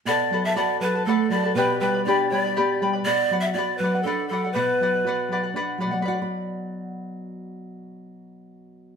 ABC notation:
X:1
M:6/8
L:1/16
Q:3/8=80
K:Bm
V:1 name="Charango"
[ABdfa]2 [ABfa] [ABa] [ABdfa]2 [ABfa] [ABa] [ABdfa]2 [ABfa] [ABa] | [GBdgb]2 [Bdgb] [Bdb] [GBdgb]2 [Bdgb] [Bdb] [GBdgb]2 [Bdgb] [Bdb] | [Bdf]2 [Bdf] [df] [Bdf]2 [Bdf] [df] [Bdf]2 [Bdf] [df] | [Bdf]2 [Bdf] [df] [Bdf]2 [Bdf] [df] [Bdf]2 [Bdf] [df] |
[Bdf]12- | [Bdf]12 |]
V:2 name="Pan flute"
d3 e d2 B2 A2 d2 | B2 B2 d2 d4 z2 | d3 e d2 B2 A2 A2 | B8 z4 |
z12 | z12 |]
V:3 name="Nylon-string guitar" clef=bass
B,,2 F,2 F2 F,2 A,2 F,2 | B,,2 G,2 D2 G,2 B,2 G,2 | B,,2 F,2 F2 F,2 D2 F,2 | B,,2 F,2 F2 F,2 D2 F,2 |
[B,,F,B,Fdb]12- | [B,,F,B,Fdb]12 |]